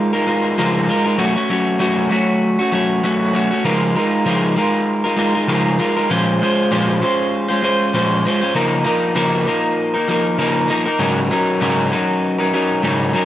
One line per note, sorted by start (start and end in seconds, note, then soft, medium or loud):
0.00 0.13 G#3 medium
0.00 0.13 D#4 medium
0.00 0.13 F4 medium
0.00 0.12 A#4 medium
0.13 0.25 G#3 soft
0.13 0.26 D#4 soft
0.13 0.27 F4 soft
0.13 0.27 A#4 medium
0.27 0.57 G#3 medium
0.27 0.58 D#4 medium
0.27 0.58 F4 medium
0.27 0.58 A#4 medium
0.58 0.88 C#3 medium
0.58 0.88 F3 medium
0.58 0.86 G#3 medium
0.58 0.87 D#4 medium
0.58 0.88 F4 medium
0.58 0.89 A#4 medium
0.88 1.05 G#3 medium
0.88 1.05 D#4 medium
0.88 1.04 F4 medium
0.88 1.03 A#4 medium
1.04 1.18 G#3 soft
1.04 1.18 D#4 soft
1.04 1.19 F4 soft
1.04 1.18 A#4 medium
1.18 1.35 F#3 medium
1.18 1.36 A3 medium
1.18 1.35 C#4 medium
1.18 1.33 F#4 medium
1.35 1.49 A3 soft
1.35 1.50 C#4 soft
1.35 1.49 F#4 soft
1.49 1.78 F#3 medium
1.49 1.79 A3 medium
1.49 1.79 C#4 medium
1.49 1.79 F#4 medium
1.79 2.09 F#3 medium
1.79 2.10 A3 medium
1.79 2.10 C#4 medium
1.79 2.11 F#4 medium
2.10 2.58 F#3 medium
2.10 2.58 A3 medium
2.10 2.59 C#4 medium
2.10 2.58 F#4 medium
2.59 2.71 A3 soft
2.59 2.72 C#4 soft
2.59 2.72 F#4 medium
2.72 3.02 F#3 medium
2.72 3.02 A3 medium
2.72 3.03 C#4 medium
2.72 3.03 F#4 medium
3.03 3.32 F#3 medium
3.03 3.33 A3 medium
3.03 3.33 C#4 medium
3.03 3.35 F#4 medium
3.33 3.50 F#3 medium
3.33 3.51 A3 medium
3.33 3.51 C#4 medium
3.33 3.49 F#4 medium
3.50 3.64 A3 soft
3.50 3.64 C#4 medium
3.50 3.64 F#4 medium
3.64 3.95 C#3 medium
3.64 3.95 F3 medium
3.64 3.94 G#3 medium
3.64 3.94 D#4 medium
3.64 3.95 F4 medium
3.64 3.95 A#4 medium
3.95 4.25 G#3 medium
3.95 4.25 D#4 medium
3.95 4.25 F4 medium
3.95 4.25 A#4 medium
4.25 4.56 C#3 medium
4.25 4.56 F3 medium
4.25 4.55 G#3 medium
4.25 4.55 D#4 medium
4.25 4.57 F4 medium
4.25 4.57 A#4 medium
4.56 5.04 G#3 medium
4.56 5.04 D#4 medium
4.56 5.04 F4 medium
4.56 5.03 A#4 medium
5.04 5.15 G#3 soft
5.04 5.16 D#4 soft
5.04 5.17 F4 soft
5.04 5.18 A#4 medium
5.16 5.34 G#3 medium
5.16 5.35 D#4 medium
5.16 5.34 F4 medium
5.16 5.33 A#4 medium
5.34 5.48 G#3 soft
5.34 5.47 D#4 soft
5.34 5.48 F4 soft
5.34 5.48 A#4 soft
5.47 5.79 C#3 medium
5.47 5.79 F3 medium
5.47 5.77 G#3 medium
5.47 5.78 D#4 medium
5.47 5.79 F4 medium
5.47 5.80 A#4 medium
5.78 5.96 G#3 medium
5.78 5.96 D#4 medium
5.78 5.96 F4 medium
5.78 5.95 A#4 medium
5.97 6.09 G#3 soft
5.97 6.10 D#4 soft
5.97 6.10 F4 medium
5.97 6.10 A#4 medium
6.10 6.40 A#2 medium
6.10 6.41 F3 medium
6.10 6.40 G#3 medium
6.10 6.41 C#4 medium
6.10 6.41 F4 medium
6.10 6.41 C5 medium
6.41 6.71 G#3 medium
6.41 6.71 C#4 medium
6.41 6.71 F4 medium
6.41 6.72 C5 medium
6.71 7.02 A#2 medium
6.71 7.02 F3 medium
6.71 7.00 G#3 medium
6.71 7.01 C#4 medium
6.71 7.02 F4 medium
6.71 7.03 C5 medium
7.01 7.49 G#3 medium
7.01 7.49 C#4 medium
7.01 7.49 F4 medium
7.01 7.47 C5 medium
7.49 7.61 G#3 soft
7.49 7.62 C#4 soft
7.49 7.63 F4 soft
7.49 7.63 C5 medium
7.62 7.94 G#3 medium
7.62 7.94 C#4 medium
7.62 7.94 F4 medium
7.62 7.94 C5 medium
7.94 8.25 A#2 medium
7.94 8.25 F3 medium
7.94 8.24 G#3 medium
7.94 8.25 C#4 medium
7.94 8.25 F4 medium
7.94 8.25 C5 medium
8.25 8.42 G#3 medium
8.25 8.42 C#4 medium
8.25 8.41 F4 medium
8.25 8.40 C5 medium
8.41 8.54 G#3 soft
8.41 8.55 C#4 medium
8.41 8.55 F4 medium
8.41 8.55 C5 medium
8.54 8.86 C#3 medium
8.54 8.83 F3 medium
8.54 8.84 A#3 medium
8.54 8.84 D#4 medium
8.54 8.85 A#4 medium
8.84 9.14 F3 medium
8.84 9.14 A#3 medium
8.84 9.15 D#4 medium
8.84 9.15 A#4 medium
9.15 9.46 C#3 medium
9.15 9.45 F3 medium
9.15 9.46 A#3 medium
9.15 9.47 D#4 medium
9.15 9.47 A#4 medium
9.47 9.95 F3 medium
9.47 9.95 A#3 medium
9.47 9.93 D#4 medium
9.47 9.93 A#4 medium
9.94 10.08 A#3 soft
9.94 10.08 D#4 medium
9.94 10.08 A#4 medium
10.08 10.37 F3 medium
10.08 10.37 A#3 medium
10.08 10.38 D#4 medium
10.08 10.38 A#4 medium
10.38 10.69 C#3 medium
10.38 10.67 F3 medium
10.38 10.68 A#3 medium
10.38 10.69 D#4 medium
10.38 10.70 A#4 medium
10.68 10.86 F3 medium
10.68 10.87 A#3 medium
10.68 10.85 D#4 medium
10.68 10.84 A#4 medium
10.86 10.99 A#3 soft
10.86 10.99 D#4 medium
10.86 10.99 A#4 medium
10.99 11.30 G#2 medium
10.99 11.30 C#3 medium
10.99 11.30 F#3 medium
10.99 11.30 C#4 medium
10.99 11.31 D#4 medium
10.99 11.31 A#4 medium
11.31 11.60 F#3 medium
11.31 11.61 C#4 medium
11.31 11.61 D#4 medium
11.31 11.61 A#4 medium
11.61 11.92 G#2 medium
11.61 11.92 C#3 medium
11.61 11.90 F#3 medium
11.61 11.91 C#4 medium
11.61 11.92 D#4 medium
11.61 11.92 A#4 medium
11.91 12.39 F#3 medium
11.91 12.39 C#4 medium
11.91 12.38 D#4 medium
11.91 12.37 A#4 medium
12.38 12.52 F#3 soft
12.38 12.53 C#4 soft
12.38 12.54 D#4 soft
12.38 12.53 A#4 medium
12.53 12.82 F#3 medium
12.53 12.83 C#4 medium
12.53 12.83 D#4 medium
12.53 12.83 A#4 medium
12.83 13.14 G#2 medium
12.83 13.15 C#3 medium
12.83 13.12 F#3 medium
12.83 13.13 C#4 medium
12.83 13.14 D#4 medium
12.83 13.14 A#4 medium
13.13 13.25 F#3 medium
13.13 13.25 C#4 medium
13.13 13.25 D#4 medium
13.13 13.25 A#4 medium